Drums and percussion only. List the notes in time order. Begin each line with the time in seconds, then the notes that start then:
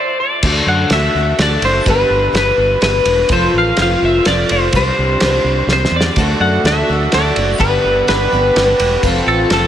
0.43 kick, crash
0.90 snare, ride
1.39 snare, ride
1.62 ride
1.86 kick, ride
2.35 snare, ride
2.82 snare, ride
3.05 ride
3.29 kick, ride
3.77 snare, ride
4.25 snare, ride
4.49 ride
4.73 kick, ride
5.20 snare, ride
5.69 snare
5.85 snare
6.01 snare
6.16 kick, ride
6.65 snare, ride
7.12 snare, ride
7.36 ride
7.60 kick, ride
8.08 snare, ride
8.56 snare, ride
8.80 ride
9.03 kick, ride
9.50 snare, ride